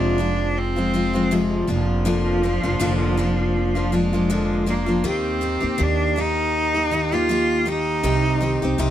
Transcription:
Already playing: F1 F2 C3 F3 G#3 C4 D4 F4
0.18 F3 G#3 C4 F4
0.58 C4
0.76 F3 G#3 C4 F4
0.94 F3 G#3 C4 F4
1.14 F3 G#3 C4 F4
1.31 F2 C3 F3 G#3 C4 F4
1.62 G3
1.67 F1 F3 A#3 D4 F4
2.05 F2 D3 F3 A#3 D4 F4
2.43 F3 A#3 D4 F4
2.63 F1 F3 A#3 D4 F4
2.80 F1 F2 D3 F3 A#3 D4 F4
3.17 F3 A#3 D4 F4
3.75 F3 A#3 D4 F4
3.92 F3 G#3 A#3 D4 F4
4.13 F3 A#3 D4 F4
4.30 F2 D3 F3 A#3 D4 F4
4.66 F3 A#3 D4 F4
4.86 F3 A#3 D4 F4
5.04 D#2 D#3 A#3 D#4 G4
5.08 C4
5.41 D#3 A#3 D#4 G4
5.61 D#2 A#3 D#4 G4
5.78 D#2 D#3 A#3 G4
5.83 D4
6.16 D#3 A#3 D#4 G4
6.74 A#3 D#4 G4
6.91 D#3 A#3 D#4 G4
7.12 A#3 D#4 F4 G4
7.29 D#3 A#3 D#4 G4
7.66 D#3 A#3 D#4 G4
8.03 C2 C3 D#3 C4 D#4 G4
8.41 D#3 C4 D#4 G4
8.62 C2 C4 D#4 G4
8.78 C2 C3 D#3 C4 D#4 G4

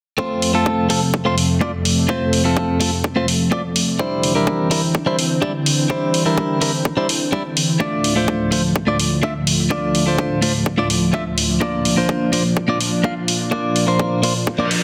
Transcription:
0.18 F2 C3 A3 C4 F4 C5, kick
0.42 open hi-hat
0.53 A3 C4 F4 A4
0.66 kick
0.89 A3 C4 F4 A4, open hi-hat
1.14 kick
1.25 A3 C4 F4 C5
1.38 open hi-hat
1.61 A3 C4 F4 D5, kick
1.85 open hi-hat
2.09 A3 C4 F4 C5, kick
2.33 open hi-hat
2.44 A3 C4 F4 A4
2.57 kick
2.80 A3 C4 F4 A4, open hi-hat
3.04 kick
3.16 A3 C4 F4 C5
3.28 open hi-hat
3.51 A3 C4 F4 D5, kick
3.76 open hi-hat
3.99 D3 E3 G3 C4 D4 E4 C5, kick
4.23 open hi-hat
4.35 G3 D4 E4 A#4
4.47 kick
4.71 G3 D4 E4 A#4, open hi-hat
4.95 kick
5.06 G3 D4 E4 C5
5.19 open hi-hat
5.42 G3 D4 E4 D5, kick
5.66 open hi-hat
5.90 G3 D4 E4 C5, kick
6.14 open hi-hat
6.25 G3 D4 E4 A#4
6.38 kick
6.61 G3 D4 E4 A#4, open hi-hat
6.85 kick
6.97 G3 D4 E4 C5
7.09 open hi-hat
7.32 G3 D4 E4 D5, kick
7.57 open hi-hat
7.80 D2 A2 F3 A3 D4 F4 D5, kick
8.04 open hi-hat
8.16 A3 D4 F4 C5
8.28 kick
8.51 A3 D4 F4 C5, open hi-hat
8.76 kick
8.87 A3 D4 F4 D5
8.99 open hi-hat
9.23 A3 D4 F4 E5, kick
9.47 open hi-hat
9.70 A3 D4 F4 D5, kick
9.95 open hi-hat
10.06 A3 D4 F4 C5
10.18 kick
10.42 A3 D4 F4 C5, open hi-hat
10.66 kick
10.77 A3 D4 F4 D5
10.90 open hi-hat
11.13 A3 D4 F4 E5, kick
11.38 open hi-hat
11.61 A#2 A#3 D4 F4 D5, kick
11.85 open hi-hat
11.96 A#3 D4 F4 C5
12.09 kick
12.32 A#3 D4 F4 C5, open hi-hat
12.57 kick
12.68 A#3 D4 F4 D5
12.81 open hi-hat
13.04 A#3 D4 F4 F5, kick
13.28 open hi-hat
13.51 A#3 D4 F4 D5, kick
13.76 open hi-hat
13.87 A#3 D4 F4 C5
13.99 kick
14.22 A#3 D4 F4 C5, open hi-hat
14.47 kick, reverse cymbal
14.58 A#3 D4 F4 D5
14.71 open hi-hat

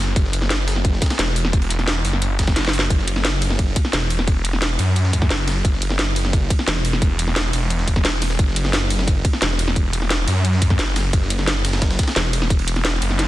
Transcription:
Already playing: F#1
0.16 F#1, kick, closed hi-hat, ride
0.25 snare
0.33 closed hi-hat, ride
0.42 snare
0.50 snare, closed hi-hat, ride
0.68 snare, open hi-hat, ride
0.76 snare
0.85 kick, closed hi-hat, ride
0.93 snare
1.02 kick, snare, closed hi-hat, ride
1.06 snare, ride
1.10 snare, ride
1.19 E1, snare, closed hi-hat, ride
1.28 snare
1.36 open hi-hat, ride
1.45 snare
1.53 kick, closed hi-hat, ride
1.62 ride
1.70 snare, closed hi-hat
1.79 snare, ride
1.88 snare, closed hi-hat, ride
2.05 F#1, open hi-hat, ride
2.13 snare
2.22 closed hi-hat, ride
2.39 kick, snare, closed hi-hat, ride
2.47 kick, snare, ride
2.56 F#1, snare, closed hi-hat, ride
2.65 snare, ride
2.68 snare
2.73 open hi-hat
2.79 snare, ride
2.90 F#1, kick, closed hi-hat, ride
2.99 snare
3.08 closed hi-hat, ride
3.16 snare
3.25 snare, closed hi-hat, ride
3.42 open hi-hat, ride
3.50 snare
3.59 kick, closed hi-hat, ride
3.76 kick, closed hi-hat, ride
3.85 snare
3.93 E1, snare, closed hi-hat, ride
4.02 snare
4.10 open hi-hat, ride
4.19 snare
4.27 kick, closed hi-hat, ride
4.45 closed hi-hat, ride
4.53 snare
4.62 snare, closed hi-hat, ride
4.79 F#2, open hi-hat, ride
4.96 closed hi-hat, ride
5.05 snare
5.13 kick, closed hi-hat, ride
5.22 kick, snare, ride
5.30 F#1, snare, closed hi-hat, ride
5.39 snare
5.48 snare, open hi-hat, ride
5.65 F#1, kick, closed hi-hat, ride
5.73 snare
5.82 closed hi-hat, ride
5.90 snare
5.99 snare, closed hi-hat, ride
6.16 open hi-hat, ride
6.25 snare
6.33 kick, closed hi-hat, ride
6.50 kick, closed hi-hat, ride
6.59 snare
6.68 E1, snare, closed hi-hat, ride
6.76 snare
6.85 open hi-hat, ride
6.93 snare
7.02 kick, closed hi-hat, ride
7.19 closed hi-hat, ride
7.28 snare
7.36 snare, closed hi-hat, ride
7.53 E1, open hi-hat, ride
7.70 closed hi-hat, ride
7.79 snare
7.88 kick, closed hi-hat, ride
7.96 kick, snare, ride
8.05 snare, closed hi-hat, ride
8.13 snare
8.22 snare, open hi-hat, ride
8.30 snare
8.39 F#1, kick, closed hi-hat, ride
8.48 snare
8.56 closed hi-hat, ride
8.65 snare
8.73 snare, closed hi-hat, ride
8.90 open hi-hat, ride
8.99 snare
9.08 kick, closed hi-hat, ride
9.25 kick, closed hi-hat, ride
9.33 snare
9.42 E1, snare, closed hi-hat, ride
9.50 snare
9.59 open hi-hat, ride
9.68 snare
9.76 kick, closed hi-hat, ride
9.93 closed hi-hat, ride
10.02 snare
10.10 snare, closed hi-hat, ride
10.28 F#2, open hi-hat, ride
10.45 closed hi-hat, ride
10.53 snare
10.62 kick, closed hi-hat, ride
10.70 kick, snare, ride
10.79 F#1, snare, closed hi-hat, ride
10.87 snare
10.96 snare, open hi-hat, ride
11.13 F#1, kick, closed hi-hat, ride
11.22 snare
11.30 closed hi-hat, ride
11.39 snare
11.47 snare, closed hi-hat, ride
11.65 snare, open hi-hat, ride
11.73 snare, ride
11.82 kick, snare, closed hi-hat, ride
11.90 snare, ride
11.99 kick, snare, closed hi-hat, ride
12.03 snare, ride
12.08 snare, ride
12.16 E1, snare, closed hi-hat, ride
12.25 snare
12.33 open hi-hat, ride
12.42 snare
12.50 kick, closed hi-hat, ride
12.59 ride
12.68 snare, closed hi-hat, ride
12.76 snare, ride
12.85 snare, closed hi-hat, ride
13.02 F#1, open hi-hat, ride
13.10 snare
13.19 snare, closed hi-hat, ride

